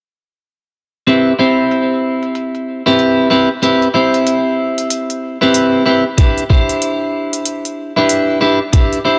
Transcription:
1.07 1.32 C4 medium
1.07 1.32 E4 medium
1.07 1.32 G4 medium
1.07 1.32 B4 medium
1.07 closed hi-hat medium
1.27 closed hi-hat soft
1.39 2.82 C4 medium
1.39 2.82 E4 medium
1.39 2.82 G4 medium
1.39 2.82 C5 medium
1.71 closed hi-hat medium
2.23 closed hi-hat medium
2.35 closed hi-hat medium
2.55 closed hi-hat soft
2.86 3.28 C4 medium
2.86 3.28 E4 medium
2.86 3.28 G4 medium
2.86 3.28 B4 loud
2.99 closed hi-hat medium
3.30 3.48 C4 medium
3.30 3.48 E4 medium
3.30 3.48 G4 medium
3.30 3.48 B4 medium
3.62 3.88 C4 medium
3.62 3.88 E4 medium
3.62 3.88 G4 medium
3.62 3.88 B4 medium
3.62 closed hi-hat medium
3.82 closed hi-hat soft
3.94 5.37 C4 medium
3.94 5.37 E4 medium
3.94 5.37 G4 medium
3.94 5.37 C5 medium
4.14 closed hi-hat medium
4.27 closed hi-hat medium
4.78 closed hi-hat medium
4.90 closed hi-hat medium
5.10 closed hi-hat soft
5.41 5.83 C4 medium
5.41 5.83 E4 medium
5.41 5.83 G4 medium
5.41 5.83 B4 medium
5.54 closed hi-hat medium
5.86 6.04 C4 medium
5.86 6.04 E4 medium
5.86 6.04 G4 medium
5.86 6.04 B4 medium
6.18 6.43 D4 medium
6.18 6.43 E4 medium
6.18 6.43 G4 medium
6.18 6.43 B4 medium
6.18 kick loud
6.18 closed hi-hat medium
6.38 closed hi-hat soft
6.50 7.92 D4 medium
6.50 7.92 E4 medium
6.50 7.92 G4 medium
6.50 7.92 C5 medium
6.50 kick loud
6.69 closed hi-hat medium
6.82 closed hi-hat medium
7.33 closed hi-hat medium
7.45 closed hi-hat medium
7.65 closed hi-hat soft
7.96 8.38 D4 medium
7.96 8.38 E4 medium
7.96 8.38 G4 medium
7.96 8.38 B4 medium
8.09 closed hi-hat medium
8.41 8.59 D4 medium
8.41 8.59 E4 medium
8.41 8.59 G4 medium
8.41 8.59 B4 medium
8.73 8.98 D4 medium
8.73 8.98 E4 medium
8.73 8.98 G4 medium
8.73 8.98 B4 medium
8.73 kick loud
8.73 closed hi-hat medium
8.93 closed hi-hat soft
9.05 9.19 D4 medium
9.05 9.19 E4 medium
9.05 9.19 G4 medium
9.05 9.19 C5 medium

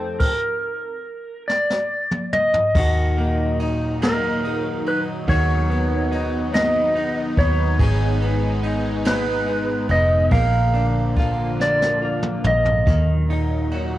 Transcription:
0.00 0.17 F1 medium
0.00 0.20 F2 medium
0.00 0.18 F3 medium
0.00 0.29 A3 medium
0.00 0.18 C4 medium
0.00 0.29 C4 soft
0.00 0.18 D#4 medium
0.00 0.18 G4 medium
0.00 0.18 A4 medium
0.00 0.29 A4 medium
0.00 0.19 C5 medium
0.20 1.86 A#4 medium
0.20 kick medium
0.20 crash medium
1.48 2.33 D5 medium
1.48 snare soft
1.70 snare medium
2.11 mid tom medium
2.33 3.56 D#5 medium
2.33 mid tom medium
2.54 floor tom medium
2.75 4.86 D#2 medium
2.75 5.26 A#2 medium
2.75 5.28 D#3 medium
2.75 7.75 F#3 medium
2.75 5.26 D#4 medium
2.75 5.28 F#4 medium
2.75 kick loud
2.75 crash medium
3.17 4.01 A#3 medium
3.17 ride soft
3.60 4.44 D#4 medium
3.60 ride soft
4.02 4.86 A#3 medium
4.02 4.83 A#4 medium
4.02 snare medium
4.02 ride medium
4.44 6.11 D#4 medium
4.44 ride soft
4.86 5.26 A#1 medium
4.86 4.99 B4 medium
4.86 ride soft
5.28 7.33 D#2 loud
5.28 8.78 D#3 medium
5.28 10.28 B3 medium
5.28 10.27 D#4 medium
5.28 7.79 F#4 medium
5.28 6.54 C#5 medium
5.28 kick loud
5.28 ride medium
5.70 6.53 B3 medium
5.70 ride soft
6.12 6.95 D#4 medium
6.12 ride soft
6.54 7.37 B3 medium
6.54 7.40 D#5 medium
6.54 snare loud
6.54 ride medium
6.95 8.63 D#4 medium
6.95 ride soft
7.37 7.77 D#2 medium
7.37 8.21 B3 medium
7.37 9.01 C#5 medium
7.37 kick medium
7.37 ride soft
7.79 9.85 G#1 loud
7.79 10.32 G#2 medium
7.79 10.29 G#3 medium
7.79 10.31 G#4 medium
7.79 kick loud
7.79 ride medium
8.21 9.04 B3 medium
8.21 ride soft
8.63 9.46 D#4 medium
8.63 ride soft
9.05 9.88 B3 medium
9.05 9.86 B4 medium
9.05 snare loud
9.05 ride medium
9.47 10.40 D#4 medium
9.47 ride soft
9.89 10.29 F1 medium
9.89 10.40 B3 medium
9.89 10.32 D#5 medium
9.89 ride soft
10.31 12.40 A#1 medium
10.31 12.87 A#2 medium
10.31 12.84 D3 medium
10.31 12.85 F3 medium
10.31 12.85 A#3 medium
10.31 13.82 A#4 medium
10.31 11.63 F5 loud
10.31 kick loud
10.31 ride medium
10.74 11.59 D4 medium
10.74 ride soft
11.16 12.01 F4 medium
11.16 kick medium
11.16 ride soft
11.60 12.45 D4 medium
11.60 12.47 D5 medium
11.60 snare soft
11.82 snare medium
12.02 12.96 F4 medium
12.23 mid tom medium
12.44 12.84 A#1 medium
12.44 13.69 D#5 medium
12.44 mid tom loud
12.65 floor tom medium
12.87 13.98 D#2 medium
12.87 13.98 A#2 medium
12.87 13.98 D#3 medium
12.87 13.98 F#3 medium
12.87 13.98 D#4 medium
12.87 kick loud
12.87 splash medium
13.30 13.98 D#4 medium
13.30 ride soft
13.71 13.98 F#4 soft
13.71 ride soft

